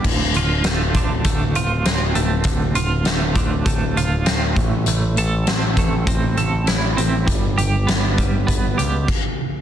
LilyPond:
<<
  \new Staff \with { instrumentName = "Clean electric guitar" } { \time 4/4 \key d \dorian \tempo 4 = 100 d,8 f'8 a8 d8 a8 f'8 c'8 a8 | d,8 f'8 a8 d8 a8 f'8 c'8 a,8 | a,8 a'8 c'8 a8 c'8 a'8 e'8 c'8 | g,8 g'8 b8 g8 b8 g'8 r4 | }
  \new Staff \with { instrumentName = "Picked electric bass" } { \clef bass \time 4/4 \key d \dorian d,,8 d,,8 d,,8 d,,8 d,,8 d,,8 d,,8 d,,8 | d,,8 d,,8 d,,8 d,,8 d,,8 d,,8 d,,8 a,,8 | a,,8 a,,8 a,,8 a,,8 a,,8 a,,8 a,,8 a,,8 | g,,8 g,,8 g,,8 g,,8 g,,8 cis,8 r4 | }
  \new DrumStaff \with { instrumentName = "Drums" } \drummode { \time 4/4 <cymc bd>8 hh8 <hh sn>8 <hh bd>8 <hh bd>8 hh8 <hh sn>8 hh8 | <hh bd>8 hh8 <hh sn>8 <hh bd>8 <hh bd>8 hh8 <hh sn>8 <hh bd>8 | hh8 hh8 <hh sn>8 <hh bd>8 <hh bd>8 hh8 <hh sn>8 hh8 | <hh bd>8 hh8 <hh sn>8 <hh bd>8 <hh bd>8 hh8 <cymc bd>4 | }
>>